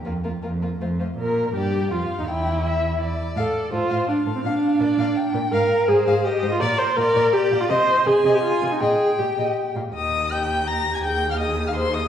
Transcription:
<<
  \new Staff \with { instrumentName = "Violin" } { \time 3/4 \key bes \major \tempo 4 = 165 f'8 f'8 f'8 f'8 f'8 f'8 | r4 d''4 f''4 | g''4 e''4 d''4~ | d''4 c''4 f''4~ |
f''4 d''4 g''4 | \key ees \major f''4 c''4 ees''4 | bes'4 d''4 d''4 | ees''4 aes''2 |
g''2~ g''8 r8 | ees''4 g''4 bes''8. aes''16 | g''8. f''16 ees''8. f''16 c''8 ees''8 | }
  \new Staff \with { instrumentName = "Violin" } { \time 3/4 \key bes \major bes'8 bes'8 bes'8 bes'8 c''8 c''8 | bes'4 g'4 f'8. ees'16 | e'2~ e'8 r8 | f''8 r8 a'8 f''8 r8 a'8 |
f''8 r8 bes'8 f''8 r8 bes'8 | \key ees \major f''8 r8 c''8 f''8 r8 c''8 | d''8 r8 f'8 d''8 r8 f'8 | ees''8 r8 aes'8 ees''8 r8 aes'8 |
ees''8 r8 g'8 ees''8 r8 f'8 | ees'''4 g'''4 bes'''8. aes'''16 | g'''8. f'''16 ees'''8. f'''16 c'''8 ees'''8 | }
  \new Staff \with { instrumentName = "Viola" } { \time 3/4 \key bes \major bes8 bes8 bes8 bes8 a8 a8 | bes'4 g'4 f'8. ees'16 | e'2~ e'8 r8 | a'4 f'4 d'8. c'16 |
d'2~ d'8 r8 | \key ees \major bes'4 aes'4 g'8. f'16 | d''8 c''8 bes'4 g'8. f'16 | c''4 aes'8. g'16 f'8. ees'16 |
aes'4 g'4. r8 | g'4 g'4 g'4 | aes'4 aes'4 aes'4 | }
  \new Staff \with { instrumentName = "Cello" } { \clef bass \time 3/4 \key bes \major f,4 f,4 f,4 | bes,4 g,4 f,8. ees,16 | e,2~ e,8 r8 | a,8 r8 a,8 a,8 r8 a,8 |
bes,8 r8 bes,8 bes,8 r8 bes,8 | \key ees \major aes,8 r8 aes,8 aes,8 r8 aes,8 | bes,8 r8 bes,8 bes,8 r8 bes,8 | c8 r8 c8 c8 r8 c8 |
bes,8 r8 bes,8 bes,8 r8 bes,8 | ees,2. | ees,2. | }
>>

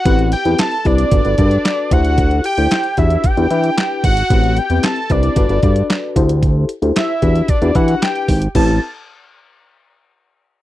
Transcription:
<<
  \new Staff \with { instrumentName = "Analog synth lead" } { \time 4/4 \key a \dorian \tempo 4 = 113 fis''8 g''8 a''8 d''2 fis''8~ | fis''8 g''4 e''8 g''4. fis''8~ | fis''8 g''8 a''8 d''2 r8 | r4 e''4 d''8 fis''8 g''8. r16 |
a''8 r2. r8 | }
  \new Staff \with { instrumentName = "FM electric piano" } { \time 4/4 \key a \dorian <c' e' g' b'>8 r16 <c' e' g' b'>8 r16 <c' e' g' b'>8 <d' fis' a' b'>16 <d' fis' a' b'>16 <d' fis' a' bes' b'>4 <e' g' a' c''>8~ | <e' g' a' c''>8 r16 <e' g' a' c''>8 r16 <d' fis' g' b'>8 r16 <d' fis' g' b'>16 <d' e' g' b'>4 r8 | <c' e' g' b'>8 r16 <c' e' g' b'>8 r16 <c' e' g' b'>8 <d' fis' a' b'>16 <d' fis' a' b'>16 <d' fis' a' b'>4 <e' g' a' c''>8~ | <e' g' a' c''>8 r16 <e' g' a' c''>8 r16 <d' fis' g' b'>8 r16 <d' fis' g' b'>16 <d' e' g' b'>4 r8 |
<c' e' g' b'>8 r2. r8 | }
  \new Staff \with { instrumentName = "Analog synth bass" } { \clef bass \time 4/4 \key a \dorian a,,8. e,16 r8 c,8 g,,16 g,,16 g,8 r8 d,8~ | d,8. d,16 r8 e,8 r16 e,16 e8 r8 gis,,8 | a,,8. e,16 r8 c,8 g,,16 g,,16 g,8 r8 d,8~ | d,8. d,16 r8 e,8 r16 e,16 e8 r8 gis,,8 |
a,,8 r2. r8 | }
  \new DrumStaff \with { instrumentName = "Drums" } \drummode { \time 4/4 <hh bd>16 hh16 hh16 hh16 <hc hh sn>16 hh16 <hh bd>16 hh16 <hh bd>16 hh16 <hh bd>16 hh16 <hc hh sn>8 <hh bd>16 hh16 | <hh bd>16 hh16 hh16 hh16 <hc hh sn>16 hh16 <hh bd>16 hh16 <hh bd>16 hh16 hh16 hh16 <hc hh sn>8 <hh bd>16 hh16 | <hh bd>16 hh16 hh16 hh16 <hc hh sn>16 hh16 <hh bd>16 hh16 <hh bd>16 hh16 <hh bd>16 hh16 <hc hh sn>8 <hh bd>16 hh16 | <hh bd>8 hh16 hh16 <hc hh sn>8 <hh bd>16 hh16 <hh bd>16 hh16 <hh bd>16 hh16 <hc hh sn>16 hh16 <hho bd>16 hh16 |
<cymc bd>4 r4 r4 r4 | }
>>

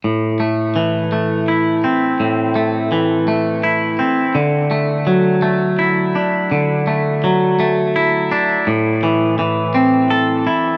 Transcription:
\new Staff \with { instrumentName = "Clean electric guitar" } { \time 6/8 \key a \dorian \tempo 4. = 56 a,8 a8 e8 a8 e'8 c'8 | a,8 a8 e8 a8 e'8 c'8 | d8 a8 fis8 a8 e'8 d'8 | d8 a8 fis8 a8 e'8 d'8 |
a,8 e8 e8 c'8 a'8 e'8 | }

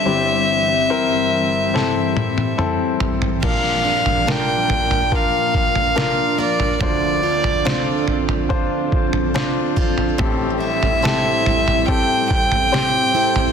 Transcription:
<<
  \new Staff \with { instrumentName = "Violin" } { \time 4/4 \key bes \lydian \tempo 4 = 71 e''2. r4 | f''4 g''4 f''4. d''8 | d''4. r2 r8 | r8 e''4. g''8 g''4. | }
  \new Staff \with { instrumentName = "Grand piano" } { \time 4/4 \key bes \lydian <c' e' g'>4 <c' e' bes'>4 <c' e' a'>4 <c' e' a'>4 | <d' f' bes'>4 <d' f' bes'>4 <d' f' bes'>4 <d' f' bes'>4 | <d' f' c''>4 <d' f' c''>4 <d' f' c''>4 <d' f' c''>4 | <c' g' a'>4 <c' g' a'>4 <c' g' a'>4 <c' g' c''>4 | }
  \new Staff \with { instrumentName = "Grand piano" } { \clef bass \time 4/4 \key bes \lydian <g,, g,>1 | <bes,, bes,>1 | <d, d>1 | <a,, a,>1 | }
  \new Staff \with { instrumentName = "Steel-string acoustic guitar" } { \time 4/4 \key bes \lydian r1 | bes,8 d'8 <bes d' bes'>2 bes8 <bes d' bes'>8 | d8 f'8 <c' f' a'>2 c'8 <c' f' a'>8 | a,8 e'8 <c' e' a'>2 c'8 <c' e' a'>8 | }
  \new Staff \with { instrumentName = "Ambient pad" } { \time 4/4 \key bes \lydian << { <g, g g'>1 | <bes bes'>1 | <c' a'>1~ | <c' a'>1 | } \\ { <e c'>1 | <f d'>1~ | <f d'>1 | <g e'>1 | } >> }
  \new DrumStaff \with { instrumentName = "Drums" } \drummode { \time 4/4 r4 r4 sn8 tommh16 tommh16 toml8 tomfh16 tomfh16 | <cymc bd tomfh>8. tomfh16 sn8 tomfh16 tomfh16 bd8 bd16 tomfh16 sn8. tomfh16 | <bd tomfh>8. tomfh16 sn8 tomfh16 tomfh16 bd8 bd16 tomfh16 sn8 bd16 tomfh16 | <bd tomfh>8. tomfh16 sn8 tomfh16 tomfh16 bd8 bd16 tomfh16 sn8. tomfh16 | }
>>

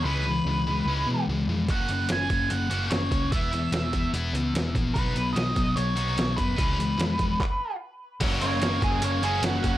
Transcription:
<<
  \new Staff \with { instrumentName = "Lead electric guitar" } { \time 4/4 \key fis \mixolydian \tempo 4 = 147 b'2. r4 | fis''4 gis''4 fis''4 cis''4 | e''2 r2 | b'4 dis''4 cis''4. b'8~ |
b'2. r4 | r8 cis''4 gis'8 cis''8 gis'8 fis'8 fis'8 | }
  \new Staff \with { instrumentName = "Distorted electric guitar" } { \time 4/4 \key fis \mixolydian <e gis cis'>8 <e gis>8 <e gis>8 <e gis>8 <e gis cis'>8 <e gis>8 <e gis>8 <e gis>8 | <ais cis' fis'>8 <ais cis'>8 <ais cis'>8 <ais cis'>8 <ais cis'>8 <ais cis' fis'>8 <ais cis'>8 <ais cis'>8 | <e b e'>8 <e b>8 <e b>8 <e b>8 <e b e'>8 <e b>8 <e b>8 <e b>8 | <fis b dis'>8 <fis b>8 <fis b>8 <fis b>8 <fis b>8 <fis b dis'>8 <fis b>8 <fis b>8 |
<e gis cis'>8 <e gis>8 <e gis>8 <e gis>8 r2 | <ais cis' fis'>8 <ais cis'>8 <ais cis'>8 <ais cis'>8 <ais cis'>8 <ais cis' fis'>8 <ais cis'>8 <ais cis'>8 | }
  \new Staff \with { instrumentName = "Overdriven electric guitar" } { \time 4/4 \key fis \mixolydian r1 | r1 | r1 | r1 |
r1 | fis8 ais8 ais8 fis8 ais8 cis'8 fis8 cis'8 | }
  \new Staff \with { instrumentName = "Picked electric bass" } { \clef bass \time 4/4 \key fis \mixolydian cis,4 cis,4 cis,8 b,8 cis,8 eis,8 | fis,,8 fis,,8 fis,,8 fis,,8 fis,,8 fis,,8 fis,,8 cis,8 | e,,4 e,,4 e,,8 cis,8 e,,8 ais,,8 | b,,8 b,,8 b,,8 b,,8 b,,8 b,,8 b,,8 fis,8 |
cis,4 eis,4 r2 | fis,,8 fis,,8 fis,,8 fis,,8 fis,,8 fis,,8 fis,,8 fis,,8 | }
  \new DrumStaff \with { instrumentName = "Drums" } \drummode { \time 4/4 r4 r4 r4 r4 | <hh bd>8 hh8 <hh sn>8 <hh bd>8 hh8 hh8 <hh sn>16 sn16 <hh bd>8 | <hh bd>8 hh8 <hh sn>8 <hh bd>8 hh8 hh8 <hh sn>8 <hh bd>8 | <hh bd>8 hh8 <hh sn>8 <hh bd>8 hh8 hh8 <hh sn>8 <hh bd>8 |
<hh bd>8 hh8 <hh sn>8 <hh bd>8 <hc bd>4 r4 | <cymc hh bd>8 hh8 <hh sn>8 <hh bd>8 hh8 hh8 <hh sn>16 sn16 <hh bd>8 | }
>>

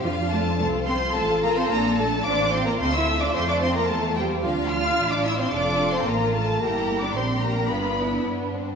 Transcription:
<<
  \new Staff \with { instrumentName = "Violin section" } { \time 4/4 \key f \major \tempo 4 = 110 f''8 a''8 a''8 c'''8 a''8 bes''16 c'''16 bes''8 a''8 | d'''8 c'''16 bes''16 c'''16 e'''8 d'''16 c'''16 d'''16 c'''16 bes''16 a''8 g''8 | f''8 f'''8. d'''16 e'''16 c'''16 d'''8. c'''16 bes''8 a''8 | bes''8. d'''16 c'''8 bes''8 b''4 r4 | }
  \new Staff \with { instrumentName = "Viola section" } { \time 4/4 \key f \major f'8 a'8 a'8 c''8 a'8 bes'16 c''16 bes'8 a'8 | d''8 c''16 bes'16 c''16 e''8 d''16 c''16 d''16 c''16 bes'16 a'8 g'8 | f'8 f''8. d''16 e''16 c''16 d''8. c''16 bes'8 a'8 | bes'8. d''16 c''8 bes'8 b'4 r4 | }
  \new Staff \with { instrumentName = "Violin section" } { \time 4/4 \key f \major << { f'4 f'4 a'2 | f'1 | f'2 a'4 f'4 | g'4 g'4 f'8 e'8 d'4 | } \\ { d'4 c'4 f'4 d'4 | c'4 a2 c'4 | d'4 d'4 f'2 | e'4 d'4 d'4 b8 c'8 | } >> }
  \new Staff \with { instrumentName = "Cello section" } { \time 4/4 \key f \major f8 a8 a8 c'8 a8 bes16 c'16 bes8 a8 | d'8 c'16 bes16 c'16 e'8 d'16 c'16 d'16 c'16 bes16 a8 g8 | f8 f'8. d'16 e'16 c'16 d'8. c'16 bes8 a8 | bes8. d'16 c'8 bes8 b4 r4 | }
  \new Staff \with { instrumentName = "Double bass section" } { \clef bass \time 4/4 \key f \major f,4 c,4 a,,4 bes,,4 | a,,4 d,4 f,4 e,4 | d,4 a,,4 f,,4 a,,4 | g,,4 bes,,4 g,,4 g,4 | }
>>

